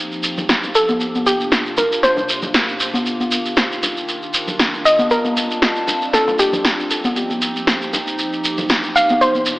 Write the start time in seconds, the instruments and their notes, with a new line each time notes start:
Already playing: ambient pad F3 A#3 C4 D#4 G4
0.12 shekere
0.23 shekere
0.38 low conga, shekere
0.49 snare, shekere
0.63 high bongo, shekere
0.75 synth pluck A4, shekere
0.88 high conga, shekere
1.01 ambient pad C3 D4 F4, shekere
1.15 high conga, shekere
1.26 synth pluck G4, shekere
1.41 shekere
1.52 snare, shekere
1.66 shekere
1.77 synth pluck A#4, high bongo, shekere
1.92 shekere
2.03 synth pluck C5, snare, shekere
2.17 high bongo, shekere
2.29 shekere
2.42 low conga, shekere
2.54 snare, shekere
2.69 shekere
2.80 shekere
2.94 high conga, shekere
3.06 ambient pad D#3 D4, shekere
3.20 high conga, shekere
3.32 shekere
3.46 shekere
3.57 snare, shekere
3.72 shekere
3.83 high bongo, shekere
3.97 shekere
4.08 shekere
4.23 shekere
4.34 shekere
4.48 low conga, shekere
4.59 snare, shekere
4.74 high bongo, shekere
4.85 synth pluck D#5, shekere
4.99 high conga, shekere
5.11 ambient pad G3 C4 A5, synth pluck A#4, shekere
5.25 high conga, shekere
5.37 shekere
5.51 shekere
5.62 snare, shekere
5.76 shekere
5.87 high bongo, shekere
6.02 shekere
6.13 synth pluck A4, snare, shekere
6.28 high bongo, shekere
6.39 synth pluck G4, shekere
6.53 low conga, shekere
6.65 snare, shekere
6.80 shekere
6.90 ambient pad F3 D#4 G4, shekere
7.04 high conga, shekere
7.16 shekere
7.30 high conga, shekere
7.42 shekere
7.56 shekere
7.67 snare, shekere
7.82 shekere
7.93 high bongo, shekere
8.07 shekere
8.19 shekere
8.33 shekere
8.45 shekere
8.58 low conga, shekere
8.69 snare, shekere
8.84 high bongo, shekere
8.96 synth pluck F5, shekere
9.09 high conga, shekere
9.21 ambient pad C3 D4 F4, synth pluck C5, shekere
9.35 high conga, shekere
9.46 shekere